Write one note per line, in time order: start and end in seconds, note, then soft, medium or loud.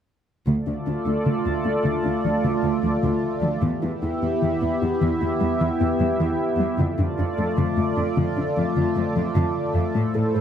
0.47 0.55 D2 soft
0.47 0.59 D3 medium
0.47 3.59 A3 soft
0.47 3.59 F4 medium
0.47 3.59 A4 medium
0.47 3.59 D5 soft
0.67 0.75 D2 soft
0.67 0.79 D4 soft
0.87 0.95 D2 soft
0.87 0.99 D4 soft
1.07 1.15 D2 soft
1.07 1.19 A3 soft
1.26 1.35 D2 soft
1.26 1.38 D3 medium
1.46 1.54 D2 soft
1.46 1.58 A3 soft
1.65 1.74 D2 soft
1.65 1.77 D4 soft
1.85 1.93 D2 soft
1.85 1.97 D3 medium
2.05 2.13 D2 soft
2.05 2.17 D4 medium
2.25 2.33 D2 soft
2.25 2.37 F3 medium
2.44 2.53 D2 soft
2.44 2.56 D3 medium
2.64 2.72 D2 soft
2.64 2.76 A3 soft
2.84 2.92 D2 soft
2.84 2.96 F3 soft
3.03 3.12 D2 soft
3.03 3.15 D3 medium
3.43 3.51 D2 soft
3.43 3.55 F3 soft
3.62 3.71 E2 soft
3.62 3.75 E3 medium
3.62 6.79 B3 medium
3.62 6.79 E4 medium
3.62 6.79 G4 medium
3.62 6.79 E5 medium
3.83 3.91 E2 soft
3.83 3.95 E4 soft
4.03 4.11 E2 soft
4.03 4.14 E4 soft
4.23 4.31 E2 soft
4.23 4.34 B3 soft
4.42 4.50 E2 medium
4.42 4.54 E3 medium
4.62 4.70 E2 soft
4.62 4.74 B3 medium
4.82 4.90 E2 soft
4.82 4.94 E4 soft
5.01 5.09 E2 medium
5.01 5.13 E3 medium
5.21 5.30 E2 soft
5.21 5.33 E4 soft
5.41 5.50 E2 soft
5.41 5.53 G3 medium
5.61 5.69 E2 soft
5.61 5.73 E3 medium
5.80 5.89 E2 soft
5.80 5.92 B3 medium
6.00 6.08 E2 soft
6.00 6.12 G3 soft
6.20 6.28 E2 medium
6.20 6.32 E3 medium
6.60 6.67 E2 soft
6.60 6.71 G3 soft
6.79 6.87 F2 medium
6.79 6.91 D3 medium
6.79 10.41 A3 medium
6.79 9.95 F4 medium
6.79 10.41 A4 medium
6.79 9.95 D5 medium
6.99 7.07 F2 soft
6.99 7.11 D4 medium
7.19 7.27 F2 soft
7.19 7.31 D4 soft
7.38 7.46 F2 soft
7.38 7.50 A3 medium
7.58 7.66 F2 medium
7.58 7.70 D3 medium
7.78 7.86 F2 soft
7.78 7.90 A3 soft
7.97 8.06 F2 soft
7.97 8.09 D4 medium
8.17 8.25 F2 medium
8.17 8.29 D3 medium
8.37 8.45 F2 soft
8.37 8.49 D4 medium
8.57 8.65 F2 soft
8.57 8.69 F3 medium
8.77 8.85 F2 medium
8.77 8.89 D3 medium
8.96 9.04 F2 soft
8.96 9.08 A3 medium
9.16 9.24 F2 soft
9.16 9.28 F3 soft
9.36 9.44 F2 medium
9.36 9.48 D3 medium
9.75 9.84 F2 soft
9.75 9.87 F3 soft
9.95 10.03 A2 medium
9.95 10.07 A3 medium
9.95 10.41 E4 medium
9.95 10.41 C5 medium
10.15 10.23 A2 soft
10.15 10.27 A4 medium
10.35 10.41 A2 soft
10.35 10.41 A4 medium